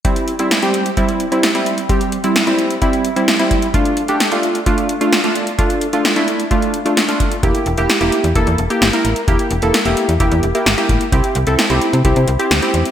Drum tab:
HH |xxxxxxxxxxxxxxxx|xxxxxxxxxxxxxxxx|xxxxxxxxxxxxxxxx|xxxxxxxxxxxxxxxx|
SD |----o-------o---|----o-------o---|----o-------o---|----o-------o---|
BD |o-------o-------|o-------o-----o-|o-------o-------|o-------o-----o-|

HH |xxxxxxxxxxxxxxxx|xxxxxxxxxxxxxxxx|xxxxxxxxxxxxxxxx|
SD |----o-------o---|----o-------o---|----o-------o---|
BD |o-------o-------|o-------o-----o-|o-------o-------|